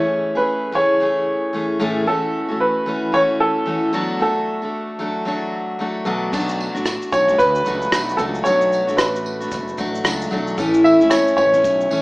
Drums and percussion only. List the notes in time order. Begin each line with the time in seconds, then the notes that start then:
6.33 kick, crash, tambourine
6.49 shaker
6.60 tambourine
6.76 cross-stick, shaker
6.85 cross-stick, tambourine, shaker
7.02 shaker
7.12 kick, tambourine, shaker
7.29 kick, shaker
7.39 kick, tambourine, shaker
7.55 shaker
7.65 tambourine, shaker
7.82 shaker
7.92 cross-stick, tambourine, shaker
8.09 shaker
8.18 kick, tambourine, shaker
8.35 shaker
8.45 tambourine, shaker
8.61 shaker
8.72 tambourine, shaker
8.88 shaker
8.98 cross-stick, tambourine, shaker
9.16 shaker
9.26 tambourine
9.41 shaker
9.52 kick, tambourine, shaker
9.68 shaker
9.78 kick, tambourine, shaker
9.95 shaker
10.05 cross-stick, tambourine, shaker
10.21 shaker
10.31 tambourine
10.47 shaker
10.58 kick, tambourine, shaker
10.74 shaker
10.86 tambourine
11.01 shaker
11.10 cross-stick, tambourine, shaker
11.28 shaker
11.38 kick, tambourine
11.54 kick, shaker
11.64 kick, tambourine, shaker
11.81 shaker
11.91 tambourine